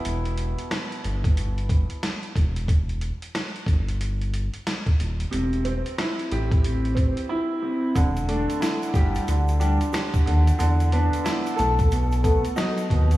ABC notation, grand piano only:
X:1
M:4/4
L:1/8
Q:"Swing 16ths" 1/4=91
K:Em
V:1 name="Grand piano"
z8 | z8 | C, C E G C, C E C, | D, D E G D, D G D, |
D, D E A B,, B, ^D B,, |]